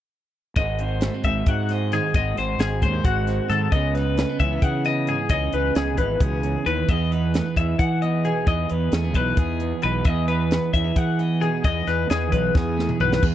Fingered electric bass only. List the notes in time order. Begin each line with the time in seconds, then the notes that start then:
0.56 G#1
1.24 G#1
1.47 G#2
2.15 G#1
2.38 G#1
2.59 G#1
2.82 D#2
3.04 G#1
3.50 G#2
3.72 C#2
4.40 C#2
4.62 C#3
5.30 C#2
5.53 C#2
5.76 C#2
5.97 G#1
6.20 C#2
6.66 D#2
6.88 E2
7.57 E2
7.79 E3
8.47 E2
8.71 E2
8.92 E2
9.14 B1
9.37 E2
9.84 B1
10.05 E2
10.74 E2
10.96 E3
11.65 E2
11.87 E2
12.10 E2
12.32 B1
12.55 E2
13.00 B1
13.23 E2